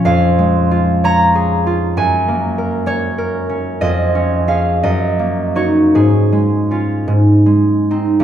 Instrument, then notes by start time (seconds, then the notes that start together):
harp
Already playing: F3 C#4 F4 C#5
0.05 F2 F5
0.39 G#3
0.71 F4
1.04 C#5 A#5
1.35 G#4
1.67 F4
1.97 F#2 G#5
2.28 A#3
2.58 A#4
2.86 C#4 C#5
3.18 A#4
3.49 C#4
3.81 F2 D#5
4.15 C#4
4.47 C#4 G#4 F5
4.83 F#2 D#5
5.19 A#3
5.55 D#4 F#4 C#5
5.95 G#2 G#4
6.32 G#3
6.71 C#4 F4
7.08 G#2
7.46 G#3
7.91 C4 D#4
8.20 C#2